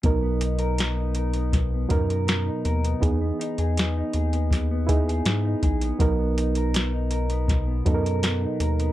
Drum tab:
HH |x-xxx-xxx-xxx-xx|x-xxx-xxx-xxx-xx|x-xxx-xxx-xxx-xx|
SD |----o---o---o---|----o---o---o---|----o---o---o---|
BD |o-------o-o-----|o-------o-o---o-|o-------o-o-----|